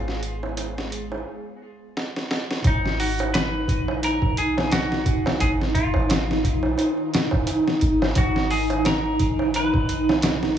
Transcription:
0.00 1.23 G#1 medium
0.00 1.27 B3 medium
0.00 0.19 F4 medium
0.00 1.27 G#4 medium
0.08 snare soft
0.08 darbuka tek soft
0.23 closed hi-hat medium
0.43 darbuka tek medium
0.57 closed hi-hat medium
0.57 darbuka tek medium
0.78 snare soft
0.78 darbuka tek soft
0.92 closed hi-hat medium
1.12 darbuka tek medium
1.97 snare medium
2.16 snare medium
2.31 snare medium
2.51 snare medium
2.64 3.70 G#1 medium
2.64 10.58 D#4 medium
2.64 2.99 D#4 loud
2.64 kick loud
2.64 closed hi-hat medium
2.64 darbuka tek medium
2.85 snare soft
2.85 darbuka tek soft
3.00 3.31 F#4 loud
3.00 open hi-hat medium
3.19 closed hi-hat soft
3.19 darbuka tek medium
3.34 4.04 B4 loud
3.34 snare loud
3.34 closed hi-hat medium
3.34 darbuka tek medium
3.54 darbuka tek soft
3.68 4.39 A#1 medium
3.68 kick medium
3.68 closed hi-hat medium
3.88 darbuka tek medium
4.03 4.38 A#4 loud
4.03 closed hi-hat medium
4.03 darbuka tek medium
4.22 kick medium
4.22 darbuka tek soft
4.37 5.38 B1 medium
4.37 4.73 G#4 loud
4.37 closed hi-hat medium
4.58 snare medium
4.58 darbuka tek medium
4.71 5.43 F#4 loud
4.71 snare loud
4.71 closed hi-hat medium
4.71 darbuka tek medium
4.92 snare soft
4.92 darbuka tek soft
5.06 kick loud
5.06 closed hi-hat medium
5.26 snare medium
5.26 darbuka tek medium
5.40 5.91 G#1 medium
5.40 5.50 G#4 loud
5.40 kick loud
5.40 closed hi-hat medium
5.40 darbuka tek medium
5.60 snare soft
5.60 darbuka tek soft
5.75 7.77 F4 medium
5.75 kick loud
5.75 closed hi-hat medium
5.94 6.46 G#1 medium
5.94 darbuka tek medium
6.09 snare loud
6.09 closed hi-hat medium
6.09 darbuka tek medium
6.29 snare medium
6.29 darbuka tek soft
6.44 6.75 A#1 medium
6.44 kick medium
6.44 closed hi-hat medium
6.63 darbuka tek medium
6.78 closed hi-hat medium
6.78 darbuka tek medium
6.98 darbuka tek soft
7.14 snare loud
7.14 closed hi-hat medium
7.31 kick loud
7.31 darbuka tek medium
7.47 closed hi-hat medium
7.47 darbuka tek medium
7.67 snare soft
7.67 darbuka tek soft
7.81 8.12 G#1 loud
7.81 closed hi-hat medium
8.02 snare soft
8.02 darbuka tek medium
8.15 9.22 G#1 loud
8.15 8.52 F#4 loud
8.15 kick loud
8.15 closed hi-hat medium
8.15 darbuka tek medium
8.35 snare soft
8.35 darbuka tek soft
8.50 8.83 G#4 medium
8.50 open hi-hat medium
8.70 closed hi-hat soft
8.70 darbuka tek medium
8.85 9.50 A#4 loud
8.85 snare loud
8.85 closed hi-hat medium
8.85 darbuka tek medium
9.05 darbuka tek soft
9.19 9.91 A#1 medium
9.19 kick medium
9.19 closed hi-hat medium
9.39 darbuka tek medium
9.54 10.58 B4 loud
9.54 closed hi-hat medium
9.54 darbuka tek medium
9.74 kick loud
9.74 darbuka tek soft
9.89 10.58 B1 medium
9.89 closed hi-hat medium
10.09 snare soft
10.09 darbuka tek medium
10.22 snare loud
10.22 closed hi-hat medium
10.22 darbuka tek medium
10.43 snare soft
10.43 darbuka tek soft

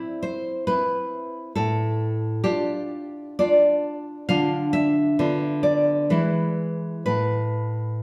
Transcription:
0.00 0.67 C4 soft
0.00 0.67 E4 soft
0.00 0.19 D5 medium
0.23 0.66 C5 medium
0.67 1.52 C4 soft
0.67 1.52 E4 soft
0.67 1.52 B4 medium
1.55 2.41 A2 medium
1.55 2.39 A4 medium
2.44 3.38 D4 soft
2.44 3.39 F4 medium
2.44 3.34 G4 medium
3.39 4.25 D4 soft
3.39 4.25 F4 soft
3.39 4.25 D5 medium
4.29 5.16 D3 medium
4.29 5.14 D4 soft
4.29 5.15 F4 soft
4.29 4.71 F5 medium
4.73 5.60 E5 medium
5.19 6.08 D3 medium
5.19 6.07 B3 soft
5.19 6.07 F4 medium
5.63 6.08 D5 medium
6.10 7.03 E3 medium
6.10 7.02 G#3 soft
6.10 7.03 E4 soft
6.10 7.02 B4 medium
7.06 8.02 A2 medium
7.06 8.00 B4 medium

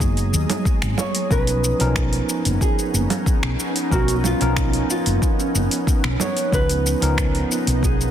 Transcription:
0.00 0.34 F#1 medium
0.00 1.27 F#3 medium
0.00 1.33 F#3 medium
0.00 1.27 G#3 medium
0.00 1.33 A#3 medium
0.00 1.30 B3 medium
0.00 1.31 D#4 medium
0.00 1.27 G#4 medium
0.00 1.33 G#4 loud
0.00 0.62 A#4 loud
0.00 1.27 A#5 medium
0.00 kick loud
0.00 shaker soft
0.17 open hi-hat soft
0.17 shaker soft
0.33 0.44 D#2 medium
0.33 shaker medium
0.50 open hi-hat medium
0.50 low conga medium
0.50 shaker soft
0.65 kick loud
0.65 shaker soft
0.82 0.93 G#1 medium
0.82 finger snap medium
0.82 open hi-hat soft
0.82 shaker soft
0.98 1.31 C#5 medium
0.98 low conga medium
0.98 shaker medium
1.15 open hi-hat medium
1.15 shaker soft
1.29 1.71 B1 medium
1.29 1.75 F3 medium
1.29 1.76 B3 medium
1.29 8.11 B3 medium
1.29 1.76 C#4 medium
1.29 6.49 C#4 medium
1.29 6.49 D#4 medium
1.29 1.76 D#4 medium
1.29 1.77 B4 loud
1.29 2.62 B4 loud
1.29 kick loud
1.29 shaker soft
1.47 open hi-hat medium
1.47 shaker soft
1.64 shaker medium
1.79 2.20 B1 medium
1.79 1.92 F3 loud
1.79 1.92 B3 medium
1.79 1.93 C#4 medium
1.79 1.93 D#4 medium
1.79 1.93 A#4 loud
1.79 open hi-hat medium
1.79 shaker soft
1.96 finger snap medium
1.96 kick loud
1.96 shaker soft
2.13 open hi-hat soft
2.29 shaker medium
2.45 2.56 F#1 medium
2.45 open hi-hat medium
2.45 shaker soft
2.61 3.88 G#4 medium
2.61 kick loud
2.61 shaker soft
2.79 shaker soft
2.93 3.05 F#1 medium
2.93 shaker medium
3.10 open hi-hat medium
3.10 low conga medium
3.10 shaker soft
3.26 kick loud
3.26 shaker soft
3.43 3.54 B1 medium
3.43 finger snap medium
3.60 shaker medium
3.76 open hi-hat medium
3.76 shaker soft
3.90 4.32 B1 loud
3.90 4.36 F3 medium
3.90 4.37 B3 medium
3.90 4.37 C#4 medium
3.90 4.37 D#4 medium
3.90 4.17 F#4 loud
3.90 4.37 A#4 loud
3.90 kick loud
3.90 shaker soft
4.08 open hi-hat soft
4.08 shaker soft
4.19 4.25 F#4 medium
4.24 4.86 F4 medium
4.24 low conga medium
4.24 shaker medium
4.40 4.81 B1 medium
4.40 4.53 F3 medium
4.40 4.53 B3 medium
4.40 4.54 C#4 medium
4.40 4.54 D#4 medium
4.40 4.54 A#4 loud
4.40 open hi-hat medium
4.40 shaker soft
4.57 finger snap medium
4.57 kick loud
4.57 shaker soft
4.73 open hi-hat soft
4.90 6.16 F4 medium
4.90 shaker medium
5.06 5.17 F#1 medium
5.06 open hi-hat medium
5.06 shaker soft
5.22 kick loud
5.22 shaker soft
5.40 shaker soft
5.55 5.66 F#1 medium
5.55 shaker medium
5.71 open hi-hat medium
5.71 shaker soft
5.87 kick loud
5.87 shaker soft
6.04 6.15 B1 medium
6.04 finger snap medium
6.20 6.54 C#5 loud
6.20 low conga medium
6.20 shaker medium
6.37 open hi-hat medium
6.37 shaker soft
6.51 6.93 C#2 medium
6.51 8.11 C#3 medium
6.51 6.97 F3 medium
6.51 6.98 B3 medium
6.51 6.98 C#4 medium
6.51 8.11 D#4 medium
6.51 6.98 D#4 medium
6.51 8.11 F4 medium
6.51 6.98 B4 loud
6.51 7.88 B4 loud
6.51 8.11 A#5 loud
6.51 kick loud
6.51 shaker soft
6.69 open hi-hat soft
6.69 shaker soft
6.86 shaker medium
7.01 7.42 C#2 medium
7.01 7.14 F3 loud
7.01 7.14 B3 medium
7.01 7.14 C#4 medium
7.01 7.14 D#4 medium
7.01 7.15 A#4 loud
7.01 open hi-hat medium
7.01 shaker soft
7.18 finger snap medium
7.18 kick loud
7.18 shaker soft
7.35 open hi-hat soft
7.52 shaker medium
7.67 8.11 B1 medium
7.67 open hi-hat medium
7.67 shaker soft
7.83 8.11 G#4 medium
7.83 kick loud
7.83 shaker soft
8.01 shaker soft

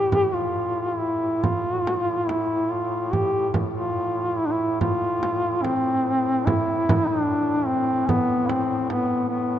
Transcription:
0.00 9.59 A2 soft
0.00 0.35 G4 medium
0.12 frame drum medium
0.34 1.00 F4 medium
0.98 1.44 E4 medium
1.43 2.30 F4 medium
1.43 frame drum medium
1.87 frame drum medium
2.28 2.72 E4 medium
2.28 frame drum soft
2.70 3.13 F4 medium
3.12 3.48 G4 medium
3.12 frame drum medium
3.54 frame drum medium
3.74 4.40 F4 medium
4.38 4.47 E4 medium
4.46 4.53 D4 medium
4.52 4.80 E4 medium
4.81 5.64 F4 medium
4.81 frame drum medium
5.23 frame drum medium
5.63 6.48 C4 medium
5.63 frame drum soft
6.46 7.08 E4 medium
6.46 frame drum medium
6.89 frame drum medium
7.07 7.69 D4 medium
7.67 8.10 C4 medium
8.08 8.50 B3 medium
8.08 frame drum medium
8.48 8.89 C4 medium
8.48 frame drum medium
8.90 9.27 B3 medium
8.90 frame drum soft
9.29 9.59 B3 medium

